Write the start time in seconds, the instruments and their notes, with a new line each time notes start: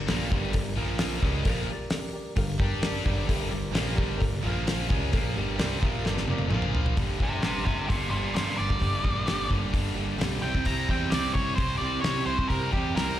0.07 picked electric bass A#1, distorted electric guitar A#2 F3 A#3, reed electric piano G4 A#4 D5, snare, open hi-hat, cowbell
0.30 picked electric bass G1, distorted electric guitar G2 D3 G3, reed electric piano G4 A#4 D5, kick
0.53 picked electric bass G1, distorted electric guitar G2 D3, reed electric piano G4 A#4 D5, kick, open hi-hat, cowbell
0.76 picked electric bass A#1, distorted electric guitar A#2 F3 A#3, reed electric piano F4 A#4 F5
0.99 snare, open hi-hat, cowbell
1.22 picked electric bass C#2, distorted electric guitar C#3 G#3 C#4, reed electric piano G4 A#4 D5, kick
1.44 picked electric bass A#1, distorted electric guitar A#2 F3 A#3, kick, open hi-hat, cowbell
1.70 reed electric piano G4 A#4 D5
1.90 reed electric piano G4 A#4 D5, snare, open hi-hat, cowbell
2.13 reed electric piano G4 A#4 D5
2.36 picked electric bass G1, distorted electric guitar G2 D3, reed electric piano G4 A#4 F5, kick, open hi-hat, cowbell
2.60 picked electric bass G2, distorted electric guitar G3 D4 G4, reed electric piano G4 A#4 D5, kick
2.82 reed electric piano G4 A#4 D5 G5, snare, open hi-hat, cowbell
3.06 picked electric bass G1, distorted electric guitar G2 D3 G3, reed electric piano G4 A#4 D5 A#5, kick
3.28 picked electric bass G1, distorted electric guitar G2 D3 G3, reed electric piano G4 A#4 E5, kick, open hi-hat, cowbell
3.51 picked electric bass G1, distorted electric guitar G2 D3, reed electric piano G4 A#4 D5
3.74 picked electric bass A#1, distorted electric guitar A#2 F3 A#3, reed electric piano G4 A#4 D5, snare, open hi-hat, cowbell
3.95 picked electric bass G1, distorted electric guitar G2 D3 G3, reed electric piano G4 A#4 D5, kick
4.18 picked electric bass G1, distorted electric guitar G2 D3, reed electric piano G4 A#4 D5, kick, cowbell
4.22 open hi-hat
4.43 picked electric bass A#1, distorted electric guitar A#2 F3 A#3, reed electric piano F4 A#4 F5
4.67 snare, open hi-hat, cowbell
4.89 picked electric bass C#2, distorted electric guitar C#3 G#3 C#4, reed electric piano G4 A#4 D5, kick
5.12 picked electric bass A#1, distorted electric guitar A#2 F3 A#3, kick, open hi-hat, cowbell
5.36 picked electric bass G1, distorted electric guitar G2 D3 G3, reed electric piano G4 A#4 D5
5.58 picked electric bass C2, distorted electric guitar C3 G3 C4, reed electric piano G4 A#4 D5, snare, open hi-hat, cowbell
5.81 picked electric bass A#1, distorted electric guitar A#2 F3 A#3, reed electric piano G4 A#4 E5, kick
6.04 picked electric bass G1, distorted electric guitar G2 D3 G3, reed electric piano G4 A#4 D5, snare, cowbell
6.17 snare
6.28 picked electric bass F1, distorted electric guitar F2 C3 F3, reed electric piano G4 A#4 D5, high tom
6.38 high tom
6.50 picked electric bass A#1, distorted electric guitar A#2 F3 A#3, reed electric piano F4 A#4 F5, mid tom, cowbell
6.62 mid tom
6.74 reed electric piano F4 A#4 F5, floor tom
6.86 floor tom
6.97 picked electric bass G1, steel-string acoustic guitar G2 D3 G3 A#3 D4 G4, distorted electric guitar G2 D3 G3, kick, open hi-hat
7.18 picked electric bass A#1, distorted electric guitar G2 D3 G3, steel-string acoustic guitar G3 A#3 D4 G4, kick
7.23 lead electric guitar G4 C5
7.42 picked electric bass G1, distorted electric guitar G2 D3 G3, steel-string acoustic guitar G2 D3 G3 A#3 D4 G4, lead electric guitar G4 C5, snare, open hi-hat
7.65 picked electric bass G1, distorted electric guitar G2 D3 G3, steel-string acoustic guitar G3 A#3 D4 G4, lead electric guitar G4 C5, kick
7.87 picked electric bass G1, distorted electric guitar G2 D3 G3, steel-string acoustic guitar G3 A#3 D4, lead electric guitar A#4 D5, kick, open hi-hat
7.91 steel-string acoustic guitar G4
8.10 picked electric bass G1, distorted electric guitar G2 D3 G3, steel-string acoustic guitar A#3 D4 G4, lead electric guitar A#4 D5
8.15 steel-string acoustic guitar G3
8.33 steel-string acoustic guitar G2 D3 G3 A#3 D4 G4, distorted electric guitar G2 D3 G3, picked electric bass G2, lead electric guitar A#4 D5, snare, open hi-hat
8.57 picked electric bass G1, distorted electric guitar G2 D3 G3, steel-string acoustic guitar G3 A#3 D4 G4, lead electric guitar D5
8.70 kick
8.79 picked electric bass G1, steel-string acoustic guitar G2 D3 G3 A#3 D4 G4, distorted electric guitar G2 D3 G3, kick, open hi-hat
9.02 picked electric bass A#1, distorted electric guitar G2 D3 G3, steel-string acoustic guitar G3 A#3 D4 G4, kick
9.25 picked electric bass G1, distorted electric guitar G2 D3 G3, steel-string acoustic guitar G2 D3 G3 A#3 G4, snare, open hi-hat
9.29 steel-string acoustic guitar D4
9.49 picked electric bass G1, distorted electric guitar G2 D3 G3, steel-string acoustic guitar G3 A#3 D4 G4, kick
9.72 picked electric bass G1, distorted electric guitar G2 D3 G3, steel-string acoustic guitar G3 A#3 D4 G4, kick, open hi-hat
9.95 picked electric bass G1, distorted electric guitar G2 D3 G3, steel-string acoustic guitar G3 A#3 D4 G4
10.18 picked electric bass B1, steel-string acoustic guitar G2 D3 G3 A#3 D4 G4, distorted electric guitar G2 D3 G3, snare, open hi-hat
10.41 picked electric bass C2, distorted electric guitar C3 G3 C4, steel-string acoustic guitar C4 E4 G4, lead electric guitar G5
10.55 kick
10.64 picked electric bass C2, steel-string acoustic guitar C3 G3 C4 E4 G4, distorted electric guitar C3 G3 C4, lead electric guitar A#5, kick, open hi-hat
10.88 picked electric bass E2, distorted electric guitar C3 G3 C4, steel-string acoustic guitar C4 E4 G4, lead electric guitar G5, kick
11.11 picked electric bass C2, steel-string acoustic guitar C3 G3 C4 E4 G4, distorted electric guitar C3 G3 C4, lead electric guitar D5, snare, open hi-hat
11.33 picked electric bass C2, distorted electric guitar C3 G3 C4, steel-string acoustic guitar C4 E4 G4, lead electric guitar C#5, kick
11.56 picked electric bass C2, distorted electric guitar C3, steel-string acoustic guitar G3 C4 E4 G4, lead electric guitar C5, kick, open hi-hat
11.60 distorted electric guitar G3 C4
11.78 picked electric bass C2, steel-string acoustic guitar G4, lead electric guitar D5
11.82 distorted electric guitar C3 G3 C4, steel-string acoustic guitar C4 E4
12.01 picked electric bass C3, steel-string acoustic guitar C3 G3 C4 E4, distorted electric guitar C3, lead electric guitar C#5, snare, open hi-hat
12.06 distorted electric guitar G3 C4, steel-string acoustic guitar G4
12.25 picked electric bass C2, overdriven electric guitar C3 G3, steel-string acoustic guitar C4 E4 G4, lead electric guitar C5
12.30 distorted electric guitar C3 G3 C4
12.39 kick
12.48 picked electric bass C2, steel-string acoustic guitar C3 G3 C4 E4 G4, lead electric guitar A#4, kick, open hi-hat
12.52 distorted electric guitar C3 G3 C4
12.73 picked electric bass E2, distorted electric guitar C3 G3 C4, steel-string acoustic guitar E4 G4, lead electric guitar G4, kick
12.77 steel-string acoustic guitar C4
12.95 picked electric bass C2, distorted electric guitar C3 G3 C4, steel-string acoustic guitar C3 G3 C4 E4 G4, lead electric guitar A#4, snare, open hi-hat